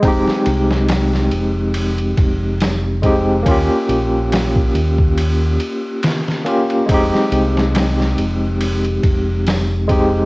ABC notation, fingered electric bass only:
X:1
M:4/4
L:1/8
Q:"Swing 16ths" 1/4=70
K:Fm
V:1 name="Fingered electric bass" clef=bass
F,,, C,,2 F,,,2 F,,,3 | E,, B,,,2 E,,2 z3 | F,,, C,,2 F,,,2 F,,,3 |]